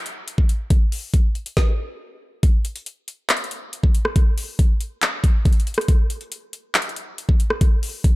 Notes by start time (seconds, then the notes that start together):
0.06 closed hi-hat
0.28 closed hi-hat
0.38 kick
0.49 closed hi-hat
0.70 kick, closed hi-hat
0.92 open hi-hat
1.14 kick, closed hi-hat
1.35 closed hi-hat
1.46 closed hi-hat
1.57 kick, snare
2.43 kick, closed hi-hat
2.65 closed hi-hat
2.76 closed hi-hat
2.86 closed hi-hat
3.08 closed hi-hat
3.29 clap, closed hi-hat
3.37 closed hi-hat
3.44 closed hi-hat
3.51 closed hi-hat
3.73 closed hi-hat
3.83 kick
3.95 closed hi-hat
4.05 cross-stick
4.16 kick, closed hi-hat
4.38 open hi-hat
4.59 kick, closed hi-hat
4.81 closed hi-hat
5.02 clap, closed hi-hat
5.24 kick, closed hi-hat
5.45 kick, closed hi-hat
5.53 closed hi-hat
5.60 closed hi-hat
5.67 closed hi-hat
5.74 cross-stick, closed hi-hat
5.81 closed hi-hat
5.88 kick, closed hi-hat
6.10 closed hi-hat
6.21 closed hi-hat
6.32 closed hi-hat
6.53 closed hi-hat
6.75 clap, closed hi-hat
6.82 closed hi-hat
6.89 closed hi-hat
6.96 closed hi-hat
7.18 closed hi-hat
7.29 kick
7.40 closed hi-hat
7.50 cross-stick
7.61 kick, closed hi-hat
7.83 open hi-hat
8.04 kick, closed hi-hat